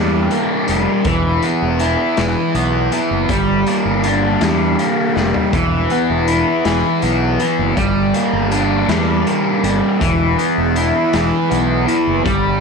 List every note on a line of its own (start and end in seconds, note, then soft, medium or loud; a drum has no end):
0.00 0.27 E2 medium
0.00 0.69 G3 medium
0.00 0.30 A#3 medium
0.00 1.05 D4 medium
0.31 1.06 A#3 medium
0.31 closed hi-hat medium
0.68 0.85 F1 medium
0.68 1.06 G3 medium
0.68 closed hi-hat medium
1.05 1.39 E1 medium
1.05 2.16 E3 medium
1.05 kick loud
1.05 closed hi-hat medium
1.42 2.53 B3 medium
1.42 closed hi-hat medium
1.62 1.95 E1 medium
1.79 3.30 E4 medium
1.79 closed hi-hat medium
2.17 2.34 E1 medium
2.17 2.92 E3 medium
2.17 snare loud
2.17 closed hi-hat medium
2.54 2.88 B1 medium
2.54 3.29 B3 medium
2.54 closed hi-hat medium
2.92 3.30 E3 medium
2.92 closed hi-hat medium
3.11 3.28 F#1 medium
3.29 3.63 G1 medium
3.29 4.41 G3 medium
3.29 kick loud
3.29 closed hi-hat medium
3.67 4.79 A#3 medium
3.67 closed hi-hat medium
3.85 4.36 G1 medium
4.04 5.54 D4 medium
4.04 closed hi-hat medium
4.41 4.75 E2 medium
4.41 5.16 G3 medium
4.41 snare medium
4.41 closed hi-hat medium
4.79 5.54 A#3 medium
4.79 closed hi-hat medium
5.16 5.33 F1 medium
5.16 5.54 G3 medium
5.16 snare medium
5.34 floor tom medium
5.53 5.87 E1 medium
5.53 6.65 E3 medium
5.53 kick medium
5.53 closed hi-hat medium
5.90 7.02 B3 medium
5.90 closed hi-hat soft
6.10 6.43 E1 medium
6.28 7.77 E4 medium
6.28 closed hi-hat medium
6.65 6.82 E1 medium
6.65 7.40 E3 medium
6.65 snare loud
6.65 closed hi-hat medium
7.02 7.36 B1 medium
7.02 7.77 B3 medium
7.02 closed hi-hat medium
7.40 7.77 E3 medium
7.40 closed hi-hat medium
7.59 7.76 F#1 medium
7.77 8.11 G1 medium
7.77 8.88 G3 medium
7.77 kick medium
7.77 closed hi-hat medium
8.14 9.25 A#3 medium
8.14 closed hi-hat medium
8.33 8.84 G1 medium
8.51 10.01 D4 medium
8.51 closed hi-hat medium
8.88 9.22 E2 loud
8.88 9.63 G3 medium
8.88 snare loud
8.88 closed hi-hat medium
9.26 10.01 A#3 medium
9.26 closed hi-hat medium
9.63 9.80 G1 medium
9.63 10.00 G3 medium
9.63 closed hi-hat medium
10.00 10.35 E1 medium
10.00 11.13 E3 medium
10.00 kick loud
10.00 closed hi-hat medium
10.38 11.49 B3 medium
10.38 closed hi-hat medium
10.58 10.91 E1 medium
10.76 12.26 E4 medium
10.76 closed hi-hat medium
11.13 11.30 E1 medium
11.13 11.86 E3 medium
11.13 snare medium
11.13 closed hi-hat medium
11.50 11.85 B1 medium
11.50 12.25 B3 medium
11.50 closed hi-hat medium
11.87 12.24 E3 medium
11.87 closed hi-hat soft
12.07 12.24 F#1 medium
12.25 12.59 G1 medium
12.25 12.60 G3 medium
12.25 kick loud
12.25 closed hi-hat medium